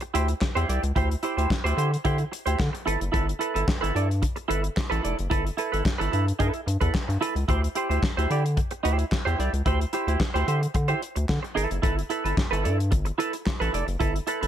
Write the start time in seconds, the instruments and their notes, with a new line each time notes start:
0.00 muted clean electric guitar stroke, closed hi-hat
0.14 analog synth bass D2, clean electric guitar E4 G4 C5, closed hi-hat
0.28 muted clean electric guitar stroke, closed hi-hat
0.42 muted clean electric guitar stroke, kick, snare, clap
0.55 analog synth bass E2, clean electric guitar E4 G4 C5, closed hi-hat
0.68 analog synth bass C2, clean electric guitar E4 G4 D5, closed hi-hat
0.83 analog synth bass C#2, muted clean electric guitar stroke, closed hi-hat
0.96 analog synth bass D2, clean electric guitar E4 G4 C5, kick, closed hi-hat
1.10 muted clean electric guitar stroke, closed hi-hat
1.23 clean electric guitar E4 G4 C5, closed hi-hat
1.37 analog synth bass D2, clean electric guitar E4 G4 C5, closed hi-hat
1.50 muted clean electric guitar stroke, kick, snare, clap
1.64 analog synth bass D2, clean electric guitar E4 G4 C5, closed hi-hat
1.77 analog synth bass D3, clean electric guitar E4 G4 C5, closed hi-hat
1.91 muted clean electric guitar stroke, closed hi-hat
2.05 analog synth bass D3, clean electric guitar E4 G4 C5, kick, closed hi-hat
2.18 muted clean electric guitar stroke, closed hi-hat
2.32 muted clean electric guitar stroke, closed hi-hat
2.46 analog synth bass D2, clean electric guitar E4 G4 C5, closed hi-hat
2.60 analog synth bass D3, kick, snare, clap
2.73 muted clean electric guitar stroke, closed hi-hat
2.86 analog synth bass G1, clean electric guitar E4 A4 B4, closed hi-hat
3.00 analog synth bass F#1, muted clean electric guitar stroke, closed hi-hat
3.12 analog synth bass G1, clean electric guitar E4 A4 B4, kick, closed hi-hat
3.27 muted clean electric guitar stroke, closed hi-hat
3.39 clean electric guitar E4 A4 B4, closed hi-hat
3.54 analog synth bass G1, clean electric guitar E4 A4 B4, closed hi-hat
3.67 muted clean electric guitar stroke, kick, snare, clap
3.81 analog synth bass G1, clean electric guitar E4 A4 B4, closed hi-hat
3.95 analog synth bass G2, clean electric guitar E4 A4 D5, closed hi-hat
4.09 muted clean electric guitar stroke, closed hi-hat
4.22 muted clean electric guitar stroke, kick, closed hi-hat
4.36 muted clean electric guitar stroke, closed hi-hat
4.48 analog synth bass G1, clean electric guitar E4 A4 B4, closed hi-hat
4.63 muted clean electric guitar stroke, closed hi-hat
4.76 muted clean electric guitar stroke, kick, snare, clap
4.90 analog synth bass A1, clean electric guitar E4 A4 B4, closed hi-hat
5.03 analog synth bass F1, clean electric guitar E4 A4 D5, closed hi-hat
5.17 analog synth bass F#1, muted clean electric guitar stroke, closed hi-hat
5.30 analog synth bass G1, clean electric guitar E4 A4 B4, kick, closed hi-hat
5.45 muted clean electric guitar stroke, closed hi-hat
5.57 clean electric guitar E4 A4 B4, closed hi-hat
5.72 analog synth bass G1, clean electric guitar E4 A4 B4, closed hi-hat
5.84 muted clean electric guitar stroke, kick, snare, clap
5.98 analog synth bass G1, clean electric guitar E4 A4 B4, closed hi-hat
6.12 analog synth bass G2, clean electric guitar E4 A4 B4, closed hi-hat
6.26 muted clean electric guitar stroke, closed hi-hat
6.39 analog synth bass G2, clean electric guitar E4 A4 B4, kick, closed hi-hat
6.54 muted clean electric guitar stroke, closed hi-hat
6.66 analog synth bass G2, muted clean electric guitar stroke, closed hi-hat
6.81 analog synth bass E2, clean electric guitar E4 A4 B4, kick, closed hi-hat
6.95 kick, snare, clap
7.08 analog synth bass G2, muted clean electric guitar stroke, closed hi-hat
7.21 clean electric guitar E4 A4 B4, closed hi-hat
7.35 analog synth bass C#2, muted clean electric guitar stroke, closed hi-hat
7.48 analog synth bass D2, clean electric guitar E4 G4 C5, kick, closed hi-hat
7.62 muted clean electric guitar stroke, closed hi-hat
7.75 clean electric guitar E4 G4 C5, closed hi-hat
7.89 analog synth bass D2, clean electric guitar E4 G4 C5, closed hi-hat
8.03 muted clean electric guitar stroke, kick, snare, clap
8.17 analog synth bass D2, clean electric guitar E4 G4 C5, closed hi-hat
8.30 analog synth bass D3, clean electric guitar E4 G4 D5, closed hi-hat
8.45 muted clean electric guitar stroke, closed hi-hat
8.57 muted clean electric guitar stroke, kick, closed hi-hat
8.71 muted clean electric guitar stroke, closed hi-hat
8.83 analog synth bass D2, clean electric guitar E4 G4 C5, closed hi-hat
8.98 muted clean electric guitar stroke, closed hi-hat
9.11 muted clean electric guitar stroke, kick, snare, clap
9.25 analog synth bass E2, clean electric guitar E4 G4 C5, closed hi-hat
9.38 analog synth bass C2, clean electric guitar E4 G4 D5, snare, closed hi-hat
9.53 analog synth bass C#2, muted clean electric guitar stroke, closed hi-hat
9.66 analog synth bass D2, clean electric guitar E4 G4 C5, kick, closed hi-hat
9.80 muted clean electric guitar stroke, closed hi-hat
9.93 clean electric guitar E4 G4 C5, closed hi-hat
10.07 analog synth bass D2, clean electric guitar E4 G4 C5, closed hi-hat
10.20 kick, snare, clap
10.34 analog synth bass D2, clean electric guitar E4 G4 C5, closed hi-hat
10.46 analog synth bass D3, clean electric guitar E4 G4 C5, closed hi-hat
10.61 muted clean electric guitar stroke, closed hi-hat
10.74 analog synth bass D3, muted clean electric guitar stroke, kick, closed hi-hat
10.88 clean electric guitar E4 G4 C5, closed hi-hat
11.02 muted clean electric guitar stroke, closed hi-hat
11.16 analog synth bass D2, muted clean electric guitar stroke, closed hi-hat
11.29 analog synth bass D3, kick, snare, clap
11.43 muted clean electric guitar stroke, closed hi-hat
11.55 analog synth bass G1, clean electric guitar E4 A4 B4, closed hi-hat
11.70 analog synth bass F#1, muted clean electric guitar stroke, closed hi-hat
11.82 analog synth bass G1, clean electric guitar E4 A4 B4, kick, closed hi-hat
11.97 muted clean electric guitar stroke, closed hi-hat
12.10 clean electric guitar E4 A4 B4, closed hi-hat
12.24 analog synth bass G1, clean electric guitar E4 A4 B4, closed hi-hat
12.37 muted clean electric guitar stroke, kick, snare, clap
12.51 analog synth bass G1, clean electric guitar E4 A4 B4, closed hi-hat
12.64 analog synth bass G2, clean electric guitar E4 A4 D5, closed hi-hat
12.78 muted clean electric guitar stroke, closed hi-hat
12.91 analog synth bass G1, muted clean electric guitar stroke, kick, closed hi-hat
13.05 muted clean electric guitar stroke, closed hi-hat
13.18 clean electric guitar E4 A4 B4, closed hi-hat
13.33 muted clean electric guitar stroke, closed hi-hat
13.46 muted clean electric guitar stroke, kick, snare, clap
13.60 analog synth bass A1, clean electric guitar E4 A4 B4, closed hi-hat
13.73 analog synth bass F1, clean electric guitar E4 A4 D5, closed hi-hat
13.87 analog synth bass F#1, muted clean electric guitar stroke, closed hi-hat
14.00 analog synth bass G1, clean electric guitar E4 A4 B4, kick, closed hi-hat
14.14 muted clean electric guitar stroke, closed hi-hat
14.27 clean electric guitar E4 A4 B4, closed hi-hat
14.41 analog synth bass G1, clean electric guitar E4 A4 B4, closed hi-hat